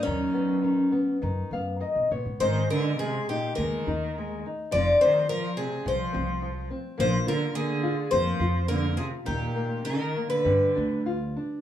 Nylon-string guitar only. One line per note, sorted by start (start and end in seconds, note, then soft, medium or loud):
0.05 0.62 D#3 medium
0.34 0.62 B3 soft
0.64 0.92 D#3 soft
0.92 1.20 B3 soft
1.22 1.50 D#3 soft
1.52 1.80 B3 soft
1.52 1.79 F5 medium
1.80 2.09 D#3 soft
1.80 2.08 D#5 medium
2.11 2.39 B3 soft
2.11 2.38 C#5 medium
2.41 2.98 G#3 medium
2.70 2.98 D#4 soft
3.00 3.27 G#3 soft
3.30 3.57 D#4 soft
3.58 3.86 G#3 medium
3.87 4.15 D#4 medium
4.18 4.44 G#3 soft
4.46 4.72 D#4 soft
4.71 5.28 F3 medium
5.01 5.28 C4 soft
5.30 5.57 F3 soft
5.59 5.86 C4 soft
5.86 6.13 F3 soft
6.13 6.41 C4 medium
6.42 6.70 F3 soft
6.70 6.98 C4 soft
6.98 7.54 A#3 medium
7.27 7.54 F4 soft
7.56 7.83 A#3 medium
7.83 8.11 F4 medium
8.11 8.39 A#3 medium
8.41 8.68 F4 medium
8.69 8.97 A#3 soft
8.98 9.26 F4 soft
9.25 9.84 D#3 medium
9.56 9.84 A#3 soft
9.85 10.14 D#3 soft
10.17 10.44 A#3 soft
10.45 11.61 G3 medium
10.75 11.05 D4 soft
11.06 11.35 F4 soft
11.37 11.61 D4 soft